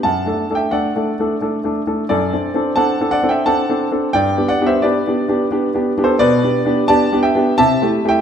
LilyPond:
\new Staff \with { instrumentName = "Grand piano" } { \time 3/4 \key g \major \tempo 4 = 88 << { <fis'' a''>8. <e'' g''>16 <d'' fis''>4. r8 | <a' d''>4 <fis'' a''>8 <d'' fis''>16 <e'' g''>16 <fis'' a''>4 | <d'' g''>8 <d'' fis''>16 <c'' e''>16 <b' d''>4.~ <b' d''>16 <a' c''>16 | <b' d''>4 <d'' a''>8 <e'' g''>8 <e'' a''>8. <e'' g''>16 | } \\ { \tuplet 3/2 { fis,8 <a d' a'>8 <a d' a'>8 <a d' a'>8 <a d' a'>8 <a d' a'>8 <a d' a'>8 <a d' a'>8 <a d' a'>8 } | \tuplet 3/2 { fis,8 <c' d' a'>8 <c' d' a'>8 <c' d' a'>8 <c' d' a'>8 <c' d' a'>8 <c' d' a'>8 <c' d' a'>8 <c' d' a'>8 } | \tuplet 3/2 { g,8 <b d' g'>8 <b d' g'>8 <b d' g'>8 <b d' g'>8 <b d' g'>8 <b d' g'>8 <b d' g'>8 <b d' g'>8 } | \tuplet 3/2 { b,8 <b d' g'>8 <b d' g'>8 <b d' g'>8 <b d' g'>8 <b d' g'>8 c8 <a e' g'>8 <a e' g'>8 } | } >> }